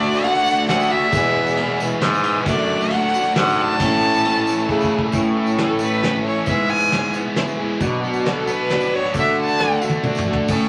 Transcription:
Already playing: bass clarinet D2, steel-string acoustic guitar D3 A3 D4 F#4, tonewheel organ F#4 D5 A5, fiddle D5
0.14 tambourine
0.22 steel-string acoustic guitar D3 A3 D4 F#4, fiddle F#5, ride
0.46 tambourine
0.67 bass clarinet D2, steel-string acoustic guitar D3 A3 D4 F#4, fiddle F#5, snare, ride
0.80 tambourine
0.90 steel-string acoustic guitar A3 D4 F#4, fiddle E5
1.12 bass clarinet E2, steel-string acoustic guitar E2 B2 E3 G#3 B3 G#4, tonewheel organ G#4 E5 B5, kick, ride, tambourine
1.46 tambourine
1.57 steel-string acoustic guitar E3 G#3 B3, ride
1.61 steel-string acoustic guitar G#4
1.80 steel-string acoustic guitar E3 G#3 B3 G#4, tambourine
2.01 overdriven electric guitar E2 B2, bass clarinet G#2, steel-string acoustic guitar E3 G#3 B3 G#4, snare, ride
2.14 tambourine
2.23 ride
2.46 bass clarinet F#2, steel-string acoustic guitar F#3 A3 D4 F#4, tonewheel organ A4 F#5 D6, fiddle D5, kick, ride, tambourine
2.81 tambourine
2.90 steel-string acoustic guitar F#3 A3 D4, fiddle F#5, ride
2.95 steel-string acoustic guitar F#4
3.14 steel-string acoustic guitar A3 D4 F#4, tambourine
3.35 bass clarinet G#2, steel-string acoustic guitar F#3 D4 F#4, overdriven electric guitar A3, snare, ride
3.39 fiddle F#5
3.47 tambourine
3.62 fiddle A5
3.79 steel-string acoustic guitar A2 E3 A3 C#4 E4, bass clarinet A2, tonewheel organ A4 E5 C#6, overdriven electric guitar A4, kick, ride, tambourine
4.13 tambourine
4.24 steel-string acoustic guitar E3 A3 C#4 E4, ride
4.47 tambourine
4.68 overdriven electric guitar A2 A4, bass clarinet C#3, steel-string acoustic guitar E3 A3 C#4 E4, kick, tambourine
4.80 kick, tambourine
4.99 kick
5.12 steel-string acoustic guitar A2 E3 A3 C#4 E4, bass clarinet A2, tonewheel organ A4 E5 C#6, kick, closed hi-hat, tambourine
5.37 overdriven electric guitar A3
5.46 tambourine
5.57 steel-string acoustic guitar E3 A3 C#4 E4, snare, closed hi-hat
5.61 fiddle A4
5.79 steel-string acoustic guitar C#4 E4, fiddle B4, tambourine
5.83 steel-string acoustic guitar A3
6.02 steel-string acoustic guitar E3 A3 C#4 E4, snare, closed hi-hat
6.26 overdriven electric guitar E3, fiddle C#5
6.45 bass clarinet G#2, steel-string acoustic guitar G#3 B3 E4 G#4, tonewheel organ G#4 B5, fiddle E5, kick, closed hi-hat, tambourine
6.69 overdriven electric guitar B3, fiddle G#5, tambourine
6.80 tambourine
6.91 steel-string acoustic guitar G#3 B3 E4 G#4, snare, closed hi-hat
7.13 steel-string acoustic guitar B3 E4 G#4, tambourine
7.36 steel-string acoustic guitar G#3 B3 E4 G#4, snare, closed hi-hat
7.47 tambourine
7.57 overdriven electric guitar G#3, steel-string acoustic guitar B3 E4 G#4
7.80 steel-string acoustic guitar B2 F#3 B3 D4 F#4, bass clarinet B2, tonewheel organ B4 F#5 D6, kick, closed hi-hat, tambourine
8.03 overdriven electric guitar B3, tambourine
8.14 tambourine
8.24 steel-string acoustic guitar F#3 B3 D4 F#4, snare, closed hi-hat
8.29 fiddle A4
8.47 steel-string acoustic guitar B3 D4 F#4, tambourine
8.51 fiddle B4
8.69 steel-string acoustic guitar F#3 B3 D4 F#4, snare, closed hi-hat
8.80 tambourine
8.92 overdriven electric guitar F#3, steel-string acoustic guitar B3 D4 F#4, fiddle C#5
9.14 steel-string acoustic guitar D3 A3 D4 F#4, bass clarinet D3, tonewheel organ A4 F#5, kick, closed hi-hat, tambourine
9.19 fiddle E5
9.38 overdriven electric guitar A3, fiddle A5
9.48 tambourine
9.59 steel-string acoustic guitar D3 A3 D4 F#4, snare
9.71 tambourine
9.81 steel-string acoustic guitar A3 D4 F#4, tambourine
9.89 high tom
10.03 steel-string acoustic guitar D3 A3 D4 F#4, mid tom, tambourine
10.15 mid tom, tambourine
10.26 overdriven electric guitar D3, steel-string acoustic guitar A3 D4 F#4
10.33 floor tom
10.48 steel-string acoustic guitar A2 E3 A3 C#4 A4, bass clarinet A2, tonewheel organ E5 C#6, kick, crash, tambourine

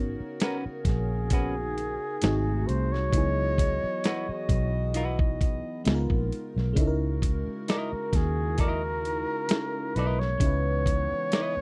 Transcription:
Already playing: fingered electric bass G#1, woodwind section C#3 B3 F#4 A#4, fm electric piano B3 C#4 D#4 F#4 A#4 C#5
0.20 muted fingered electric bass stroke
0.40 clean electric guitar C#4 F#4 B4, flugelhorn A#4, snare, closed hi-hat
0.66 muted fingered electric bass stroke
0.85 fingered electric bass A#1, flugelhorn G#4, kick, snare, closed hi-hat
1.30 clean electric guitar C#4 F#4 B4, kick, closed hi-hat
1.78 closed hi-hat
2.21 fingered electric bass G#1, woodwind section C3 A3 F#4, fm electric piano A3 C4 D#4 F#4, snare, closed hi-hat
2.25 fm electric piano G#4
2.67 fingered electric bass C2, flugelhorn C5, closed hi-hat
2.92 flugelhorn C#5, snare
3.10 fingered electric bass C#2, woodwind section E3 B3 F#4 D#5, fm electric piano F#3 B3 D#4, kick, closed hi-hat
3.16 fm electric piano E4 G#4
3.58 kick, closed hi-hat
3.84 muted fingered electric bass stroke
4.04 clean electric guitar E4 F#4 B4, snare, closed hi-hat
4.29 muted fingered electric bass stroke
4.49 fingered electric bass B1, kick, closed hi-hat
4.94 clean electric guitar E4 F#4 B4, closed hi-hat
5.19 kick
5.41 kick, closed hi-hat
5.84 fingered electric bass C#2, woodwind section C#3 F4 A#4, fm electric piano G#3 B3 D#4 F4, snare, closed hi-hat
5.89 fm electric piano G#4
5.95 fm electric piano A#4
6.10 fingered electric bass A#1, kick
6.32 closed hi-hat
6.56 fingered electric bass B1, snare
6.73 fingered electric bass C#2, fm electric piano G#3 C#4, woodwind section G#3 F#4, kick, closed hi-hat
6.77 fm electric piano D#4 E4 A4
6.87 fm electric piano A#4
7.22 kick, closed hi-hat
7.47 muted fingered electric bass stroke
7.68 clean electric guitar E4 A#4 D#5, flugelhorn A#4, snare, closed hi-hat
7.93 muted fingered electric bass stroke
8.13 fingered electric bass D#2, flugelhorn G#4, kick, snare, closed hi-hat
8.58 clean electric guitar E4 A#4 D#5, flugelhorn A#4, kick, closed hi-hat
9.05 closed hi-hat
9.48 fm electric piano G#3 C#4 D#4 E4 A4, muted clean electric guitar stroke, snare, closed hi-hat
9.59 fm electric piano A#4
9.95 fingered electric bass B1, clean electric guitar E4 A#4 D#5, flugelhorn B4, closed hi-hat
10.19 flugelhorn C#5, snare
10.38 fingered electric bass C#2, woodwind section E3 B3, fm electric piano G#3 C#4, kick, closed hi-hat
10.42 fm electric piano D#4 E4 B4
10.86 kick, closed hi-hat
11.12 muted fingered electric bass stroke
11.32 clean electric guitar E4 B4 D#5, snare, closed hi-hat
11.57 muted fingered electric bass stroke

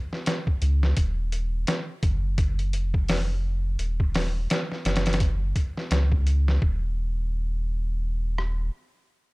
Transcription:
0.13 snare
0.26 snare, closed hi-hat
0.47 kick
0.62 sub bass C#2, closed hi-hat
0.83 snare
0.97 sub bass D#1, kick, closed hi-hat
1.32 closed hi-hat
1.67 snare, closed hi-hat
2.03 sub bass F#1, kick, closed hi-hat
2.38 kick, closed hi-hat
2.59 closed hi-hat
2.73 sub bass F1, closed hi-hat
2.94 kick
3.09 snare, open hi-hat
3.79 sub bass D#1, closed hi-hat
4.00 kick
4.15 snare, open hi-hat
4.50 snare, closed hi-hat
4.72 snare
4.85 sub bass F#1, snare, closed hi-hat
4.96 snare, closed hi-hat
5.06 snare, closed hi-hat
5.13 snare, closed hi-hat
5.20 kick, closed hi-hat
5.56 kick, closed hi-hat
5.77 snare
5.91 sub bass C#2, snare, closed hi-hat
6.12 kick
6.27 closed hi-hat
6.48 snare
6.62 sub bass D#1, kick
8.38 cross-stick

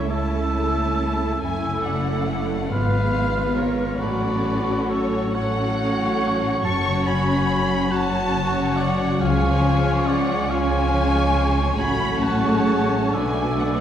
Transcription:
Already playing: double bass section C#2, cello section C#3, harp C#3 A3 C#4 E4 C#5, french horn section A3, viola section C#4, oboe C#5, violin section E5
0.10 french horn section A3 E4, viola section A3 C#4, violin section E4 A4 A5, clarinet A4, harp C#5, oboe E5, flute E6
0.34 harp E4
0.56 harp C#4
0.78 harp A3
1.21 harp A3
1.41 double bass section F#1, cello section F#2, harp F#2, french horn section A3 E4, viola section A3 C#4, violin section E4 A4 G#5, clarinet A4, oboe E5, flute E6
1.64 harp C#3
1.84 harp A3, oboe D5, violin section F#5
2.28 harp C#5
2.48 harp E4
2.69 double bass section G#1, harp G#2, cello section G#2, viola section G#3 B3, french horn section B3 F4, violin section F4 B4 F5, oboe B4, clarinet B4, flute F6
2.91 harp G#3
3.34 harp F4
3.56 oboe A#4, harp B4, violin section C#5
3.78 harp F4
3.99 double bass section A1, cello section A2, harp A2, french horn section F#3 C#4, viola section F#3 C#4, violin section F#4 A4 D5, clarinet F#4, oboe B4, flute C#6
4.20 harp A3
4.43 harp F#3
4.88 oboe A4, violin section C#5, harp C#5
5.13 harp C#4
5.35 french horn section F#3 C#4, viola section F#3 C#4, violin section F#4 A4 F#5, clarinet F#4, oboe C#5, harp C#5, flute C#6
5.58 harp C#4
6.01 harp F#3
6.22 harp A3
6.43 harp F#3
6.64 double bass section F#1, harp F#2, cello section F#2, viola section F#3 C#4, french horn section F#3 C#4, violin section F#4 C#5 C#6, clarinet F#4, oboe A5, flute C#6
6.86 harp C#3
7.07 harp F#3, oboe G#5, violin section B5
7.28 harp C#4
7.49 harp C#5
7.71 harp C#4
7.90 viola section F#3 C#4, french horn section F#3 C#4, violin section F#4 C#5 A5, clarinet F#4, oboe F#5, flute C#6
8.13 harp C#4
8.34 harp C#3
8.56 harp F#3
8.77 harp C#3, oboe D5, violin section F#5
8.99 harp F#3
9.21 double bass section C#2, cello section C#3, harp C#3, viola section F3 C#4, french horn section F3 C#4, clarinet F4, violin section G#4 C#5 G#5, oboe F5, flute C#6
9.44 harp F3
9.86 harp C#5
10.07 oboe D5, violin section F#5
10.27 harp C#5
10.48 viola section F3 C#4, french horn section F3 C#4, harp F4, clarinet F4, violin section G#4 C#5 G#5, oboe F5, flute C#6
10.71 harp C#5
10.93 harp F3
11.15 viola section G#3
11.35 harp F3
11.78 double bass section A1, harp A2, cello section A2, french horn section F#3 C#4, viola section A3 C#4, clarinet F#4, violin section F#4 C#5 B5, oboe G#5, flute C#6
12.00 harp A3
12.23 harp F#3, oboe F#5, violin section A5
12.45 french horn section G#3, harp C#4, clarinet G#4
12.67 harp C#5
13.11 double bass section B1, harp B2, cello section B2, french horn section A3 D4, viola section A3 D4, violin section F#4 B4 G#5, clarinet A4, oboe E5, flute D6
13.36 harp F#3
13.59 harp A3, oboe D5, violin section F#5
13.68 violin section G#5
13.76 violin section F#5

